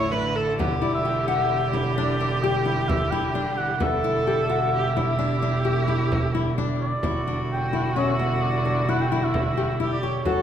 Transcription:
0.00 0.60 A1 medium
0.00 7.00 D3 medium
0.00 0.57 A3 medium
0.00 3.79 E4 medium
0.00 0.13 C#5 medium
0.00 0.35 E5 medium
0.11 0.46 D4 medium
0.11 0.37 B4 medium
0.35 0.57 A4 medium
0.58 3.81 E1 medium
0.58 7.00 G3 medium
0.58 0.76 B3 medium
0.58 3.84 G4 medium
0.58 frame drum medium
0.81 0.99 E4 medium
0.81 0.92 D5 medium
0.94 1.26 E5 loud
1.05 1.22 G4 medium
1.28 1.71 E5 medium
1.28 1.61 F#5 medium
1.73 1.90 E4 medium
1.73 frame drum soft
1.96 2.14 D4 medium
1.96 2.44 D5 medium
2.21 2.37 D4 medium
2.43 2.60 G4 medium
2.43 2.90 G5 medium
2.66 2.99 E4 medium
2.88 3.12 E5 medium
2.88 frame drum medium
3.11 3.29 E4 medium
3.11 3.59 G5 medium
3.11 frame drum soft
3.35 3.69 D4 medium
3.58 3.81 F#5 medium
3.80 7.00 E1 medium
3.80 3.97 B3 medium
3.80 7.01 E4 medium
3.80 4.73 A4 medium
3.80 6.54 E5 medium
3.80 frame drum medium
4.04 4.21 E4 medium
4.04 frame drum soft
4.27 4.44 G4 medium
4.49 4.83 F#4 medium
4.49 frame drum soft
4.74 4.95 G4 medium
4.96 5.13 E4 medium
4.96 6.78 G4 medium
4.96 frame drum soft
5.19 5.36 D4 medium
5.42 5.59 D4 medium
5.65 5.82 G4 medium
5.65 frame drum soft
5.88 6.22 E4 medium
5.88 frame drum soft
6.12 frame drum medium
6.35 6.52 E4 medium
6.58 6.92 D4 medium
6.58 frame drum soft
6.81 7.46 D5 medium
7.03 10.27 E1 medium
7.03 10.23 D3 medium
7.03 10.24 G3 medium
7.03 7.21 E4 medium
7.03 10.23 E4 medium
7.03 9.76 F#4 medium
7.03 frame drum medium
7.27 7.61 D4 medium
7.52 7.94 G5 medium
7.73 7.90 E4 medium
7.96 8.13 C#4 medium
7.96 8.44 E5 medium
8.19 8.53 B3 medium
8.19 frame drum soft
8.43 8.91 D5 medium
8.65 8.82 D4 medium
8.89 9.05 E4 medium
8.89 9.03 F#5 medium
9.01 9.25 G5 medium
9.12 9.45 E4 medium
9.24 9.80 E5 medium
9.34 frame drum medium
9.57 9.74 G4 medium
9.80 9.97 E4 medium
9.80 10.23 G4 medium
9.80 9.91 E5 medium
9.92 10.04 D5 medium
10.03 10.20 G4 medium
10.03 10.42 C#5 medium
10.24 10.42 F#1 medium
10.24 10.42 C#3 medium
10.24 10.42 A3 medium
10.24 10.42 F#4 medium
10.24 10.42 A4 medium
10.24 frame drum medium

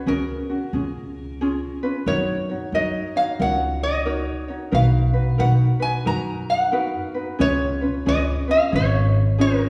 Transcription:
0.06 0.34 C#2 medium
0.06 0.49 C#4 medium
0.06 0.48 F#4 medium
0.06 0.49 G#4 medium
0.06 1.79 A#4 medium
0.50 0.73 C#4 soft
0.50 0.74 F#4 soft
0.73 1.60 C#2 medium
0.73 1.41 C#4 medium
0.73 1.41 F4 medium
0.73 1.40 G#4 medium
1.41 1.83 C#4 medium
1.41 1.82 F4 medium
1.41 1.83 G#4 medium
1.83 2.07 C#4 soft
1.83 2.08 F4 soft
1.83 2.07 B4 medium
2.06 2.50 F#2 medium
2.06 2.49 D#4 medium
2.06 2.49 F#4 medium
2.06 2.49 A#4 medium
2.06 2.74 C#5 medium
2.06 2.48 C#5 medium
2.49 2.73 D#4 soft
2.49 2.74 F#4 soft
2.49 2.74 C#5 soft
2.72 3.00 F#2 medium
2.72 3.16 D#4 medium
2.72 3.16 F#4 medium
2.72 3.16 A#4 medium
2.72 3.15 C#5 medium
2.72 3.17 D#5 medium
3.16 3.39 D#4 soft
3.16 3.40 F#4 soft
3.16 3.40 C#5 soft
3.16 3.41 F5 medium
3.40 4.26 C#2 loud
3.40 4.06 D#4 medium
3.40 4.06 F#4 medium
3.40 4.05 A#4 medium
3.40 4.06 C#5 medium
3.40 3.84 F#5 medium
3.83 4.45 D#5 medium
4.05 4.48 D#4 medium
4.05 4.48 F#4 medium
4.05 4.48 A#4 medium
4.05 4.47 C#5 medium
4.48 4.71 D#4 soft
4.48 4.72 F#4 soft
4.48 4.73 C#5 soft
4.72 5.16 B1 medium
4.72 5.14 D#4 medium
4.72 5.14 F#4 medium
4.72 5.14 A#4 medium
4.72 5.12 B4 medium
4.72 5.39 F5 medium
5.13 5.38 D#4 soft
5.13 5.38 F#4 soft
5.13 5.38 B4 soft
5.38 5.67 B1 medium
5.38 5.81 D#4 medium
5.38 5.79 F#4 medium
5.38 5.81 A#4 medium
5.38 5.78 B4 medium
5.38 5.51 F#5 medium
5.80 6.04 D#4 soft
5.80 6.05 F#4 medium
5.80 6.05 B4 soft
5.80 6.05 G#5 medium
6.05 6.93 F#2 medium
6.05 6.71 D#4 medium
6.05 6.72 F#4 medium
6.05 6.71 A#4 medium
6.05 6.73 B4 medium
6.05 6.50 A#5 medium
6.50 7.12 F#5 medium
6.72 7.15 D#4 medium
6.72 7.15 F#4 medium
6.72 7.14 A#4 medium
6.72 7.13 B4 medium
7.14 7.38 D#4 soft
7.14 7.39 F#4 soft
7.14 7.39 B4 medium
7.39 7.83 C#2 loud
7.39 7.81 C#4 medium
7.39 7.81 F4 medium
7.39 7.81 G#4 medium
7.39 7.80 B4 medium
7.39 8.08 C#5 loud
7.81 8.05 C#4 soft
7.81 8.05 F4 soft
7.81 8.06 B4 soft
8.06 8.34 C#2 medium
8.06 8.48 C#4 medium
8.06 8.48 F4 medium
8.06 8.48 G#4 medium
8.06 8.46 B4 medium
8.06 8.19 D#5 medium
8.48 8.71 C#4 soft
8.48 8.72 F4 soft
8.48 8.73 B4 soft
8.48 8.75 F5 medium
8.71 9.59 G#1 medium
8.71 9.39 C#4 medium
8.71 9.39 F4 medium
8.71 9.37 G#4 medium
8.71 9.40 B4 medium
8.76 9.43 C#5 medium
9.38 9.69 C#4 medium
9.38 9.69 F4 medium
9.38 9.69 G#4 medium
9.38 9.69 A#4 medium

